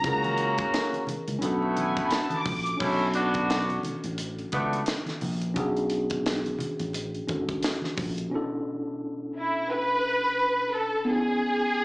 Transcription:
0.00 1.38 C#4 medium
0.00 1.39 E4 medium
0.00 0.74 A#5 loud
0.04 0.60 C#2 loud
0.04 1.06 A#3 medium
0.04 1.06 C#4 medium
0.04 1.06 F#4 medium
0.04 1.40 G#4 medium
0.04 1.41 A#4 medium
0.04 kick loud
0.04 closed hi-hat medium
0.04 muted conga soft
0.04 low conga medium
0.24 closed hi-hat soft
0.24 muted conga soft
0.24 high conga soft
0.38 closed hi-hat medium
0.58 kick medium
0.58 closed hi-hat medium
0.74 snare loud
0.74 closed hi-hat medium
0.74 muted conga soft
0.93 closed hi-hat soft
0.93 muted conga soft
1.07 muted fingered electric bass stroke soft
1.07 closed hi-hat medium
1.07 high conga medium
1.07 low conga medium
1.28 1.40 C#2 medium
1.28 closed hi-hat medium
1.39 1.98 B1 medium
1.39 2.44 A3 medium
1.39 2.44 B3 medium
1.39 2.76 C#4 medium
1.39 2.77 D4 medium
1.39 2.44 E4 medium
1.39 2.78 F#4 medium
1.39 closed hi-hat medium
1.39 muted conga soft
1.45 2.79 A4 medium
1.62 muted conga soft
1.77 2.05 G#5 medium
1.77 closed hi-hat medium
1.77 high conga medium
1.97 kick medium
1.97 closed hi-hat soft
2.07 2.12 B5 medium
2.07 closed hi-hat medium
2.07 muted conga soft
2.12 2.35 A5 medium
2.12 snare medium
2.30 closed hi-hat soft
2.30 muted conga soft
2.30 high conga medium
2.36 2.81 D6 medium
2.45 2.74 A#1 medium
2.45 kick loud
2.45 open hi-hat medium
2.45 low conga medium
2.66 closed hi-hat medium
2.77 3.80 B1 loud
2.77 3.08 A3 medium
2.77 5.51 C#4 medium
2.77 3.08 C#4 medium
2.77 5.52 D4 medium
2.77 3.08 E4 loud
2.77 5.53 F#4 medium
2.77 kick loud
2.77 crash medium
2.77 low conga medium
2.83 5.54 A4 medium
3.14 3.80 B3 medium
3.14 3.80 D4 medium
3.14 3.80 F#4 medium
3.14 closed hi-hat medium
3.34 kick medium
3.34 closed hi-hat medium
3.50 snare loud
3.50 closed hi-hat medium
3.69 closed hi-hat soft
3.69 muted conga soft
3.83 muted fingered electric bass stroke soft
3.83 closed hi-hat medium
3.83 high conga medium
3.83 low conga medium
4.04 4.44 A1 medium
4.04 closed hi-hat medium
4.18 closed hi-hat medium
4.18 muted conga soft
4.39 closed hi-hat soft
4.39 muted conga soft
4.52 4.81 C#2 medium
4.52 4.81 A3 medium
4.52 4.81 B3 medium
4.52 4.81 D4 medium
4.52 kick medium
4.52 closed hi-hat medium
4.52 high conga medium
4.73 closed hi-hat soft
4.86 snare loud
4.86 closed hi-hat medium
4.86 muted conga soft
5.06 snare soft
5.06 closed hi-hat soft
5.06 high conga medium
5.21 5.56 A#1 loud
5.21 open hi-hat medium
5.21 low conga medium
5.42 closed hi-hat medium
5.54 6.56 B1 loud
5.54 7.24 C#4 medium
5.54 7.25 D4 medium
5.54 7.26 F#4 medium
5.54 kick loud
5.54 closed hi-hat medium
5.54 muted conga soft
5.54 low conga medium
5.60 7.27 G#4 medium
5.77 closed hi-hat soft
5.90 closed hi-hat medium
6.10 kick medium
6.10 closed hi-hat medium
6.26 snare loud
6.26 closed hi-hat medium
6.45 closed hi-hat soft
6.45 muted conga soft
6.59 muted fingered electric bass stroke soft
6.59 closed hi-hat medium
6.59 high conga medium
6.59 low conga medium
6.80 7.20 A1 loud
6.80 closed hi-hat medium
6.93 closed hi-hat loud
6.93 muted conga soft
7.15 closed hi-hat soft
7.27 7.57 G#1 loud
7.27 8.30 C#4 medium
7.27 8.31 D4 medium
7.27 8.33 F#4 soft
7.27 8.33 A4 medium
7.27 kick medium
7.27 closed hi-hat medium
7.27 high conga medium
7.49 kick medium
7.49 closed hi-hat soft
7.62 snare loud
7.62 closed hi-hat medium
7.62 muted conga soft
7.82 snare soft
7.82 muted conga soft
7.82 high conga medium
7.97 8.26 A#1 medium
7.97 kick loud
7.97 open hi-hat medium
7.97 low conga medium
8.18 closed hi-hat medium
8.30 11.03 B2 medium
8.30 11.04 C#4 medium
8.30 11.04 D4 medium
8.34 11.05 E4 medium
8.34 11.06 A4 medium
9.37 9.68 E4 medium
9.71 10.74 B4 loud
10.73 11.08 A4 loud
11.05 11.85 B3 medium
11.05 11.85 C#4 medium
11.05 11.16 D4 soft
11.05 11.85 G#4 loud
11.11 11.85 G#4 medium
11.15 11.85 E4 medium

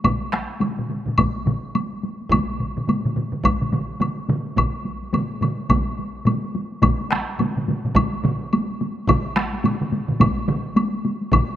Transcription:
0.04 taiko medium
0.04 taiko low-mid medium
0.04 taiko mid medium
0.04 taiko high medium
0.04 high woodblock soft
0.21 taiko high soft
0.33 taiko rim medium
0.33 taiko high soft
0.50 taiko high soft
0.60 taiko low-mid medium
0.60 taiko mid medium
0.60 taiko high medium
0.60 high woodblock soft
0.78 taiko low-mid medium
0.78 taiko mid medium
0.78 taiko high soft
0.89 taiko low-mid medium
0.89 taiko mid medium
0.89 taiko high soft
1.06 taiko low-mid medium
1.06 taiko mid medium
1.06 taiko high soft
1.18 taiko medium
1.18 taiko low-mid medium
1.18 taiko mid medium
1.18 taiko high medium
1.18 high woodblock medium
1.37 taiko high soft
1.46 taiko low-mid loud
1.46 taiko mid medium
1.46 taiko high medium
1.75 taiko high medium
1.75 high woodblock soft
1.93 taiko high soft
2.03 taiko high soft
2.21 taiko high soft
2.31 taiko medium
2.31 taiko low-mid medium
2.31 taiko mid medium
2.31 taiko high medium
2.31 high woodblock medium
2.50 taiko high soft
2.60 taiko low-mid medium
2.60 taiko mid medium
2.77 taiko low-mid medium
2.77 taiko mid medium
2.77 taiko high soft
2.88 taiko low-mid medium
2.88 taiko mid medium
2.88 taiko high medium
2.88 high woodblock soft
3.05 taiko low-mid medium
3.05 taiko mid medium
3.05 taiko high soft
3.16 taiko low-mid medium
3.16 taiko mid medium
3.16 taiko high soft
3.33 taiko low-mid medium
3.33 taiko mid medium
3.33 taiko high soft
3.44 taiko medium
3.44 taiko low-mid medium
3.44 taiko mid medium
3.44 taiko high medium
3.44 high woodblock medium
3.61 taiko low-mid medium
3.61 taiko mid medium
3.61 taiko high soft
3.73 taiko low-mid medium
3.73 taiko mid medium
3.73 taiko high soft
4.00 taiko low-mid medium
4.00 taiko mid medium
4.00 taiko high medium
4.00 high woodblock soft
4.18 taiko high soft
4.29 taiko low-mid medium
4.29 taiko mid loud
4.29 taiko high soft
4.46 taiko high soft
4.56 taiko medium
4.56 taiko low-mid medium
4.56 taiko mid medium
4.56 taiko high medium
4.56 high woodblock medium
4.74 taiko high soft
4.85 taiko high soft
5.02 taiko high soft
5.13 taiko low-mid loud
5.13 taiko mid medium
5.13 taiko high medium
5.13 high woodblock soft
5.31 taiko high soft
5.41 taiko low-mid medium
5.41 taiko mid medium
5.41 taiko high soft
5.41 high woodblock soft
5.59 taiko high soft
5.69 taiko loud
5.69 taiko low-mid medium
5.69 taiko mid medium
5.69 taiko high medium
5.69 high woodblock medium
5.88 taiko high soft
5.99 taiko high soft
6.25 taiko low-mid medium
6.25 taiko mid medium
6.25 taiko high medium
6.25 high woodblock soft
6.44 taiko high soft
6.55 taiko high medium
6.72 taiko high soft
6.82 taiko loud
6.82 taiko low-mid medium
6.82 taiko mid medium
6.82 taiko high medium
6.82 high woodblock medium
7.00 taiko high soft
7.11 taiko rim medium
7.12 taiko rim medium
7.12 taiko high medium
7.29 taiko high soft
7.39 taiko low-mid medium
7.39 taiko mid medium
7.39 taiko high medium
7.39 high woodblock soft
7.56 taiko low-mid medium
7.56 taiko mid medium
7.56 taiko high soft
7.68 taiko low-mid medium
7.68 taiko mid medium
7.68 taiko high medium
7.85 taiko low-mid medium
7.85 taiko mid medium
7.85 taiko high soft
7.95 taiko loud
7.95 taiko low-mid medium
7.95 taiko mid medium
7.95 taiko high medium
7.95 high woodblock medium
8.13 taiko high soft
8.24 taiko low-mid loud
8.24 taiko mid loud
8.24 taiko high medium
8.53 taiko high medium
8.53 high woodblock soft
8.70 taiko high soft
8.81 taiko high medium
8.98 taiko high soft
9.07 taiko loud
9.07 taiko low-mid medium
9.07 taiko mid medium
9.07 taiko high medium
9.07 high woodblock medium
9.27 taiko high soft
9.36 taiko rim medium
9.36 taiko high medium
9.53 taiko high soft
9.64 taiko low-mid medium
9.64 taiko mid medium
9.64 taiko high medium
9.64 high woodblock soft
9.81 taiko low-mid medium
9.81 taiko mid medium
9.81 taiko high soft
9.91 taiko low-mid medium
9.91 taiko mid medium
9.91 taiko high medium
10.08 taiko low-mid medium
10.08 taiko mid medium
10.08 taiko high soft
10.20 taiko loud
10.20 taiko low-mid loud
10.20 taiko mid medium
10.20 taiko high medium
10.20 high woodblock medium
10.37 taiko high soft
10.48 taiko low-mid loud
10.48 taiko mid loud
10.48 taiko high medium
10.76 taiko high medium
10.76 high woodblock soft
10.93 taiko high soft
11.05 taiko high medium
11.21 taiko high soft
11.32 taiko medium
11.32 taiko low-mid loud
11.32 taiko mid loud
11.32 taiko high medium
11.32 high woodblock medium
11.49 taiko high soft

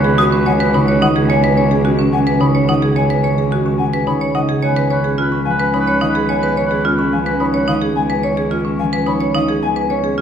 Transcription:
0.00 4.47 C#2 medium
0.00 0.72 C#3 medium
0.00 1.00 D#3 medium
0.00 0.44 F#3 medium
0.00 0.17 G#3 medium
0.00 1.28 B3 loud
0.00 1.56 C#4 medium
0.00 0.17 G#4 medium
0.00 0.20 B4 medium
0.00 0.72 C#5 medium
0.00 1.00 D#5 medium
0.00 0.45 G#5 loud
0.04 0.22 G#4 medium
0.18 1.83 G#3 medium
0.18 0.36 F#4 medium
0.18 1.83 G#4 medium
0.18 0.24 D#6 loud
0.28 0.48 B4 medium
0.32 0.50 C#4 medium
0.46 2.11 F#3 medium
0.46 0.64 C#5 medium
0.46 0.52 F#5 medium
0.46 1.27 G#5 medium
0.57 0.78 B4 medium
0.73 2.39 C#3 medium
0.73 0.92 D#4 medium
0.73 1.55 C#5 medium
0.73 0.80 B5 medium
0.87 1.07 B4 soft
0.87 1.06 C#5 medium
1.01 2.67 D#3 medium
1.01 1.20 D#4 loud
1.01 2.67 D#5 medium
1.01 1.08 F#5 medium
1.16 1.33 G#4 medium
1.29 2.94 B3 medium
1.29 1.47 C#5 medium
1.29 2.11 G#5 medium
1.29 1.36 G#5 medium
1.44 1.61 B4 loud
1.56 3.22 C#4 medium
1.56 2.38 C#5 medium
1.56 1.75 C#5 medium
1.71 1.89 G#4 medium
1.84 3.50 G#3 medium
1.84 2.03 F#4 medium
1.84 3.49 G#4 medium
1.99 2.17 C#4 medium
2.12 3.78 F#3 medium
2.12 2.19 F#5 medium
2.12 2.94 G#5 medium
2.27 2.44 B4 medium
2.40 4.06 C#3 medium
2.40 2.58 D#4 medium
2.40 3.22 C#5 medium
2.40 2.47 B5 medium
2.55 2.72 C#5 medium
2.68 4.33 D#3 medium
2.68 2.86 D#4 medium
2.68 4.33 D#5 medium
2.68 2.75 F#5 medium
2.82 3.00 G#4 medium
2.95 4.61 B3 medium
2.95 3.14 C#5 medium
2.95 3.77 G#5 medium
2.95 3.02 G#5 medium
3.10 3.28 B4 medium
3.23 4.89 C#4 medium
3.23 4.05 C#5 medium
3.23 3.42 C#5 medium
3.38 3.56 G#4 medium
3.50 5.17 G#3 medium
3.50 3.70 F#4 medium
3.50 5.16 G#4 medium
3.66 3.83 C#4 medium
3.78 4.64 F#3 medium
3.78 3.85 F#5 medium
3.78 4.61 G#5 medium
3.93 4.11 B4 medium
4.06 4.65 C#3 medium
4.06 4.25 D#4 medium
4.06 4.89 C#5 medium
4.06 4.13 B5 medium
4.21 4.39 C#5 medium
4.34 4.64 D#3 medium
4.34 4.53 D#4 medium
4.34 4.64 D#5 medium
4.34 4.41 F#5 medium
4.49 4.67 G#4 medium
4.62 10.21 C#2 medium
4.62 6.28 B3 medium
4.62 4.83 B4 soft
4.62 4.80 C#5 medium
4.62 5.44 G#5 medium
4.62 4.68 G#5 medium
4.76 4.94 B4 medium
4.90 6.56 C#4 medium
4.90 5.12 B4 soft
4.90 5.73 C#5 medium
4.90 5.08 C#5 medium
5.04 5.22 G#4 medium
5.17 6.83 G#3 medium
5.17 5.36 F4 medium
5.17 6.84 G#4 medium
5.17 5.41 B4 medium
5.32 5.50 C#4 medium
5.45 7.11 F3 medium
5.45 5.52 F5 medium
5.45 6.28 G#5 medium
5.50 5.70 B4 medium
5.60 5.78 B4 medium
5.74 5.92 D#4 medium
5.74 6.56 C#5 medium
5.74 5.79 B5 medium
5.79 5.99 B4 medium
5.88 6.05 C#5 medium
6.01 7.67 D#3 medium
6.01 6.19 D#4 medium
6.01 7.67 D#5 medium
6.01 6.07 F5 medium
6.09 6.29 B4 medium
6.15 6.33 G#4 medium
6.29 7.94 B3 medium
6.29 6.47 C#5 medium
6.29 6.35 G#5 medium
6.29 7.11 G#5 medium
6.37 6.57 B4 medium
6.43 6.61 B4 medium
6.57 8.22 C#4 medium
6.57 7.39 C#5 medium
6.57 6.75 C#5 medium
6.67 6.87 B4 medium
6.71 6.89 G#4 medium
6.85 8.50 G#3 medium
6.85 7.03 F4 medium
6.85 8.50 G#4 medium
6.95 7.17 C#4 medium
6.95 7.15 B4 medium
7.12 8.78 F3 medium
7.12 7.18 F5 medium
7.12 7.94 G#5 medium
7.24 7.44 B4 soft
7.24 7.44 B4 medium
7.40 7.58 D#4 medium
7.40 8.23 C#5 medium
7.40 7.46 B5 medium
7.53 7.73 B4 soft
7.53 7.72 C#5 medium
7.68 9.33 D#3 medium
7.68 7.86 D#4 medium
7.68 9.34 D#5 medium
7.68 7.74 F5 medium
7.82 8.00 G#4 medium
7.95 9.61 B3 medium
7.95 8.78 G#5 medium
7.95 8.02 G#5 medium
8.10 8.28 B4 medium
8.23 9.88 C#4 medium
8.23 8.41 C#5 medium
8.23 9.06 C#5 medium
8.37 8.55 G#4 medium
8.51 10.16 G#3 medium
8.51 8.69 F4 medium
8.51 10.17 G#4 medium
8.65 8.83 C#4 medium
8.79 10.21 F3 medium
8.79 8.85 F5 medium
8.79 9.61 G#5 medium
8.93 9.11 B4 medium
9.06 9.25 D#4 medium
9.06 9.89 C#5 medium
9.06 9.13 B5 medium
9.20 9.39 C#5 medium
9.34 10.21 D#3 medium
9.34 9.53 D#4 medium
9.34 10.21 D#5 medium
9.34 9.41 F5 medium
9.48 9.66 G#4 medium
9.62 10.21 B3 medium
9.62 10.21 G#5 medium
9.62 9.68 G#5 medium
9.76 9.94 B4 medium
9.90 10.21 C#4 medium
9.90 10.08 C#5 medium
9.90 10.21 C#5 medium
10.04 10.21 G#4 medium
10.17 10.21 G#3 medium
10.17 10.21 F4 medium

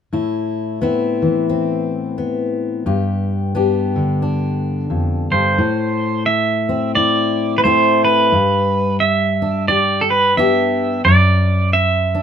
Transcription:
0.13 2.86 A2 soft
0.13 0.81 E4 soft
0.82 2.17 B3 soft
0.82 1.48 C4 soft
0.82 2.86 E4 soft
1.22 2.83 E3 soft
1.49 2.83 C4 soft
2.18 3.54 B3 soft
2.86 4.90 G2 soft
2.86 3.54 G4 soft
3.55 5.56 B3 soft
3.55 4.21 D4 soft
3.55 5.57 G4 soft
3.96 5.59 D3 soft
4.22 5.56 D4 soft
4.90 5.31 F2 soft
5.31 5.59 G2 soft
5.31 6.23 C5 soft
5.58 8.32 A2 medium
6.26 6.91 E5 medium
6.69 7.64 C4 soft
6.95 7.64 E4 medium
6.95 7.54 D5 medium
7.58 7.63 B4 soft
7.64 8.35 A3 soft
7.64 8.29 C4 soft
7.64 8.33 E4 soft
7.64 8.02 C5 medium
8.05 8.96 B4 medium
8.32 11.02 G2 medium
9.00 9.68 E5 medium
9.42 10.37 D4 soft
9.68 10.37 G4 soft
9.68 10.02 D5 medium
10.01 10.10 A4 soft
10.10 10.35 B4 medium
10.37 11.02 B3 soft
10.37 11.03 D4 soft
10.37 11.03 G4 soft
10.37 11.01 E5 medium
11.05 12.22 F#2 medium
11.05 11.73 D5 medium
11.73 12.22 E5 medium
12.15 12.22 D4 soft

